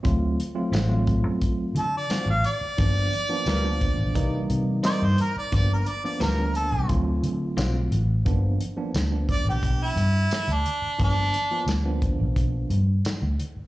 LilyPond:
<<
  \new Staff \with { instrumentName = "Harmonica" } { \time 4/4 \key d \dorian \tempo 4 = 88 r2 r8 a'16 d''8 eis''16 d''8~ | d''2~ d''8 r8 d''16 c''16 bes'16 d''16 | d''16 ais'16 d''16 d''16 ais'8 a'8 r2 | r4. d''16 g'8 e'4 d'8. |
d'4 r2. | }
  \new Staff \with { instrumentName = "Clean electric guitar" } { \time 4/4 \key d \dorian r4 <d c' eis' fis'>8 r4. <d c' eis' fis'>8 r8 | r4 <g b f' ais'>8 r4. <c' e' bes' dis''>8 r8 | r4 <g b f' ais'>8 r4. <d c' eis' fis'>8 r8 | r1 |
r1 | }
  \new Staff \with { instrumentName = "Tine electric piano" } { \time 4/4 \key d \dorian <fis a c' eis'>8 r16 <fis a c' eis'>16 r16 <fis a c' eis'>4~ <fis a c' eis'>16 r4. | <f ais b d'>8 r16 <f ais b d'>16 r16 <f ais b d'>8. <e g bes dis'>4. r8 | <f ais b d'>8 r16 <f ais b d'>16 r16 <f ais b d'>8. <fis a c' eis'>4. r8 | <f ais b d'>8 r16 <f ais b d'>16 r16 <f ais b d'>4~ <f ais b d'>16 r4. |
<f ais b d'>8 r16 <f ais b f'>16 r16 <f ais b d'>4~ <f ais b d'>16 r4. | }
  \new Staff \with { instrumentName = "Fingered electric bass" } { \clef bass \time 4/4 \key d \dorian d,8 r8 a,,8. fis,8. d8 r16 a,,16 r8 | g,,8 r8 d,8. b,,16 c,8 c8 r16 g,16 r8 | g,,8 r8 d,8. c,16 d,8 d8 b,,8 a,,8 | g,,8 r8 d,8. b,,8. g,8 r16 d,16 r8 |
g,,8 r8 d,8. b,,8. g,8 r16 d,16 r8 | }
  \new DrumStaff \with { instrumentName = "Drums" } \drummode { \time 4/4 <hh bd>8 hh8 <hh sn tamb>8 <hh bd>8 <hh bd>8 hh8 <hh sn tamb>8 hh8 | <hh bd>8 hh8 <hh sn tamb>8 <hh bd>8 <hh bd>8 hh8 <hh sn tamb>8 hh8 | <hh bd>8 hh8 <hh sn tamb>8 hh8 <hh bd>8 hh8 <hh sn tamb>8 hh8 | <hh bd>8 hh8 <hh sn tamb>8 <hh bd>8 <hh bd>8 hh8 <hh sn tamb>8 hh8 |
<hh bd>8 hh8 <hh sn tamb>8 <hh bd>8 <hh bd>8 hh8 <hh sn tamb>8 hh8 | }
>>